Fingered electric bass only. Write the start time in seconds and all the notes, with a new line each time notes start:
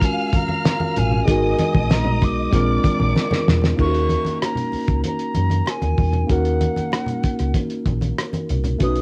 0.97 A1
1.28 G#1
1.75 A#1
2.23 B1
2.53 A#1
3.01 A#1
3.48 E2
3.79 D#2
4.26 muted fingered electric bass stroke
4.73 muted fingered electric bass stroke
4.89 C#2
5.36 F#2
5.83 D#2
5.98 E2
6.30 D#2
6.77 muted fingered electric bass stroke
7.24 muted fingered electric bass stroke
7.40 C#2
7.86 A#1
8.50 C2
8.81 B1